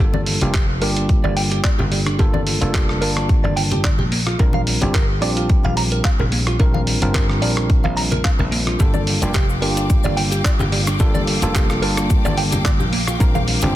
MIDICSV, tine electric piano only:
0, 0, Header, 1, 2, 480
1, 0, Start_track
1, 0, Key_signature, -2, "minor"
1, 0, Tempo, 550459
1, 1912, Time_signature, 4, 2, 24, 8
1, 11997, End_track
2, 0, Start_track
2, 0, Title_t, "Tine electric piano"
2, 0, Program_c, 0, 4
2, 0, Note_on_c, 0, 55, 77
2, 0, Note_on_c, 0, 58, 67
2, 0, Note_on_c, 0, 62, 69
2, 0, Note_on_c, 0, 65, 72
2, 0, Note_on_c, 0, 69, 84
2, 328, Note_off_c, 0, 55, 0
2, 329, Note_off_c, 0, 58, 0
2, 330, Note_off_c, 0, 62, 0
2, 332, Note_off_c, 0, 65, 0
2, 332, Note_off_c, 0, 69, 0
2, 358, Note_on_c, 0, 55, 83
2, 360, Note_on_c, 0, 58, 75
2, 361, Note_on_c, 0, 62, 73
2, 364, Note_on_c, 0, 65, 77
2, 365, Note_on_c, 0, 67, 89
2, 453, Note_off_c, 0, 55, 0
2, 454, Note_off_c, 0, 58, 0
2, 455, Note_off_c, 0, 62, 0
2, 456, Note_off_c, 0, 65, 0
2, 457, Note_off_c, 0, 67, 0
2, 704, Note_on_c, 0, 55, 85
2, 707, Note_on_c, 0, 58, 79
2, 711, Note_on_c, 0, 62, 76
2, 716, Note_on_c, 0, 65, 77
2, 721, Note_on_c, 0, 67, 92
2, 1882, Note_off_c, 0, 55, 0
2, 1883, Note_off_c, 0, 58, 0
2, 1885, Note_off_c, 0, 62, 0
2, 1888, Note_off_c, 0, 65, 0
2, 1890, Note_off_c, 0, 67, 0
2, 1908, Note_on_c, 0, 55, 80
2, 1910, Note_on_c, 0, 58, 74
2, 1911, Note_on_c, 0, 62, 74
2, 1914, Note_on_c, 0, 65, 77
2, 1917, Note_on_c, 0, 69, 91
2, 2249, Note_off_c, 0, 55, 0
2, 2249, Note_off_c, 0, 58, 0
2, 2250, Note_off_c, 0, 62, 0
2, 2251, Note_off_c, 0, 65, 0
2, 2253, Note_off_c, 0, 69, 0
2, 2274, Note_on_c, 0, 55, 87
2, 2276, Note_on_c, 0, 58, 78
2, 2278, Note_on_c, 0, 62, 77
2, 2280, Note_on_c, 0, 65, 79
2, 2283, Note_on_c, 0, 69, 92
2, 2602, Note_off_c, 0, 55, 0
2, 2603, Note_off_c, 0, 58, 0
2, 2604, Note_off_c, 0, 62, 0
2, 2605, Note_off_c, 0, 65, 0
2, 2607, Note_off_c, 0, 69, 0
2, 2622, Note_on_c, 0, 55, 75
2, 2627, Note_on_c, 0, 58, 66
2, 2630, Note_on_c, 0, 62, 66
2, 2635, Note_on_c, 0, 65, 68
2, 2639, Note_on_c, 0, 81, 76
2, 3574, Note_off_c, 0, 55, 0
2, 3576, Note_off_c, 0, 58, 0
2, 3578, Note_off_c, 0, 62, 0
2, 3581, Note_off_c, 0, 65, 0
2, 3582, Note_off_c, 0, 81, 0
2, 3826, Note_on_c, 0, 55, 79
2, 3829, Note_on_c, 0, 60, 72
2, 3831, Note_on_c, 0, 62, 71
2, 3833, Note_on_c, 0, 65, 74
2, 3835, Note_on_c, 0, 70, 84
2, 4168, Note_off_c, 0, 55, 0
2, 4169, Note_off_c, 0, 60, 0
2, 4170, Note_off_c, 0, 62, 0
2, 4171, Note_off_c, 0, 65, 0
2, 4172, Note_off_c, 0, 70, 0
2, 4196, Note_on_c, 0, 55, 89
2, 4199, Note_on_c, 0, 60, 77
2, 4199, Note_on_c, 0, 62, 73
2, 4203, Note_on_c, 0, 65, 75
2, 4204, Note_on_c, 0, 67, 97
2, 4292, Note_off_c, 0, 55, 0
2, 4294, Note_off_c, 0, 60, 0
2, 4294, Note_off_c, 0, 62, 0
2, 4295, Note_off_c, 0, 65, 0
2, 4296, Note_off_c, 0, 67, 0
2, 4541, Note_on_c, 0, 55, 86
2, 4546, Note_on_c, 0, 60, 79
2, 4549, Note_on_c, 0, 62, 80
2, 4554, Note_on_c, 0, 65, 79
2, 4559, Note_on_c, 0, 67, 96
2, 5720, Note_off_c, 0, 55, 0
2, 5723, Note_off_c, 0, 60, 0
2, 5724, Note_off_c, 0, 62, 0
2, 5727, Note_off_c, 0, 65, 0
2, 5729, Note_off_c, 0, 67, 0
2, 5747, Note_on_c, 0, 55, 80
2, 5750, Note_on_c, 0, 60, 77
2, 5752, Note_on_c, 0, 62, 74
2, 5755, Note_on_c, 0, 65, 72
2, 5756, Note_on_c, 0, 70, 95
2, 6088, Note_off_c, 0, 55, 0
2, 6090, Note_off_c, 0, 60, 0
2, 6090, Note_off_c, 0, 62, 0
2, 6092, Note_off_c, 0, 65, 0
2, 6092, Note_off_c, 0, 70, 0
2, 6117, Note_on_c, 0, 55, 91
2, 6120, Note_on_c, 0, 60, 82
2, 6122, Note_on_c, 0, 62, 80
2, 6124, Note_on_c, 0, 65, 80
2, 6126, Note_on_c, 0, 70, 91
2, 6443, Note_off_c, 0, 55, 0
2, 6445, Note_off_c, 0, 60, 0
2, 6446, Note_off_c, 0, 62, 0
2, 6447, Note_off_c, 0, 65, 0
2, 6448, Note_off_c, 0, 70, 0
2, 6462, Note_on_c, 0, 55, 71
2, 6466, Note_on_c, 0, 60, 65
2, 6471, Note_on_c, 0, 62, 70
2, 6475, Note_on_c, 0, 65, 67
2, 6480, Note_on_c, 0, 70, 77
2, 7641, Note_off_c, 0, 55, 0
2, 7643, Note_off_c, 0, 60, 0
2, 7645, Note_off_c, 0, 62, 0
2, 7647, Note_off_c, 0, 65, 0
2, 7650, Note_off_c, 0, 70, 0
2, 7667, Note_on_c, 0, 55, 79
2, 7669, Note_on_c, 0, 58, 70
2, 7670, Note_on_c, 0, 62, 74
2, 7674, Note_on_c, 0, 65, 68
2, 7676, Note_on_c, 0, 69, 84
2, 8008, Note_off_c, 0, 55, 0
2, 8009, Note_off_c, 0, 58, 0
2, 8010, Note_off_c, 0, 62, 0
2, 8012, Note_off_c, 0, 65, 0
2, 8012, Note_off_c, 0, 69, 0
2, 8035, Note_on_c, 0, 55, 82
2, 8039, Note_on_c, 0, 58, 79
2, 8039, Note_on_c, 0, 62, 76
2, 8042, Note_on_c, 0, 65, 74
2, 8045, Note_on_c, 0, 67, 91
2, 8132, Note_off_c, 0, 55, 0
2, 8133, Note_off_c, 0, 58, 0
2, 8134, Note_off_c, 0, 62, 0
2, 8135, Note_off_c, 0, 65, 0
2, 8137, Note_off_c, 0, 67, 0
2, 8378, Note_on_c, 0, 55, 86
2, 8383, Note_on_c, 0, 58, 78
2, 8387, Note_on_c, 0, 62, 81
2, 8391, Note_on_c, 0, 65, 82
2, 8395, Note_on_c, 0, 67, 93
2, 9559, Note_off_c, 0, 55, 0
2, 9561, Note_off_c, 0, 58, 0
2, 9563, Note_off_c, 0, 62, 0
2, 9565, Note_off_c, 0, 65, 0
2, 9567, Note_off_c, 0, 67, 0
2, 9586, Note_on_c, 0, 55, 85
2, 9588, Note_on_c, 0, 58, 76
2, 9591, Note_on_c, 0, 62, 75
2, 9593, Note_on_c, 0, 65, 76
2, 9596, Note_on_c, 0, 69, 95
2, 9928, Note_off_c, 0, 55, 0
2, 9928, Note_off_c, 0, 58, 0
2, 9930, Note_off_c, 0, 62, 0
2, 9931, Note_off_c, 0, 65, 0
2, 9933, Note_off_c, 0, 69, 0
2, 9957, Note_on_c, 0, 55, 87
2, 9959, Note_on_c, 0, 58, 81
2, 9963, Note_on_c, 0, 62, 81
2, 9964, Note_on_c, 0, 65, 84
2, 9966, Note_on_c, 0, 69, 97
2, 10284, Note_off_c, 0, 55, 0
2, 10285, Note_off_c, 0, 58, 0
2, 10286, Note_off_c, 0, 62, 0
2, 10287, Note_off_c, 0, 65, 0
2, 10288, Note_off_c, 0, 69, 0
2, 10302, Note_on_c, 0, 55, 72
2, 10308, Note_on_c, 0, 58, 68
2, 10312, Note_on_c, 0, 62, 70
2, 10316, Note_on_c, 0, 65, 66
2, 10320, Note_on_c, 0, 81, 81
2, 11254, Note_off_c, 0, 55, 0
2, 11257, Note_off_c, 0, 58, 0
2, 11259, Note_off_c, 0, 62, 0
2, 11261, Note_off_c, 0, 65, 0
2, 11263, Note_off_c, 0, 81, 0
2, 11507, Note_on_c, 0, 55, 83
2, 11509, Note_on_c, 0, 60, 73
2, 11512, Note_on_c, 0, 62, 72
2, 11513, Note_on_c, 0, 65, 72
2, 11516, Note_on_c, 0, 70, 84
2, 11848, Note_off_c, 0, 55, 0
2, 11849, Note_off_c, 0, 60, 0
2, 11851, Note_off_c, 0, 62, 0
2, 11851, Note_off_c, 0, 65, 0
2, 11853, Note_off_c, 0, 70, 0
2, 11877, Note_on_c, 0, 55, 83
2, 11880, Note_on_c, 0, 60, 77
2, 11882, Note_on_c, 0, 62, 76
2, 11885, Note_on_c, 0, 65, 77
2, 11887, Note_on_c, 0, 67, 100
2, 11973, Note_off_c, 0, 55, 0
2, 11974, Note_off_c, 0, 60, 0
2, 11975, Note_off_c, 0, 62, 0
2, 11977, Note_off_c, 0, 65, 0
2, 11978, Note_off_c, 0, 67, 0
2, 11997, End_track
0, 0, End_of_file